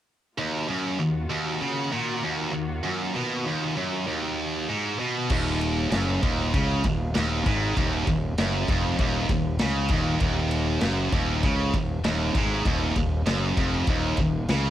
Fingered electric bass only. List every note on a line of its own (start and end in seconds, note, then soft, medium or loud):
5.30 5.88 D#1 medium
5.92 6.20 F#1 medium
6.23 6.51 D#1 medium
6.53 6.82 C#2 medium
6.85 7.13 D#1 medium
7.17 7.44 D#1 loud
7.46 7.74 G#1 medium
7.77 8.05 D#1 loud
8.07 8.35 D#1 medium
8.38 8.66 F#1 loud
8.69 8.97 F1 loud
8.99 9.27 D#1 loud
9.29 9.58 D#1 medium
9.59 9.88 C#2 loud
9.89 10.18 D#1 medium
10.21 10.78 D#1 medium
10.82 11.11 F#1 medium
11.12 11.41 D#1 loud
11.43 11.72 C#2 loud
11.74 12.02 D#1 medium
12.04 12.33 D#1 medium
12.35 12.64 G#1 medium
12.66 12.94 D#1 medium
12.97 13.25 D#1 medium
13.27 13.55 F#1 loud
13.57 13.86 F1 medium
13.87 14.16 D#1 medium
14.18 14.47 D#1 medium
14.49 14.70 C#2 loud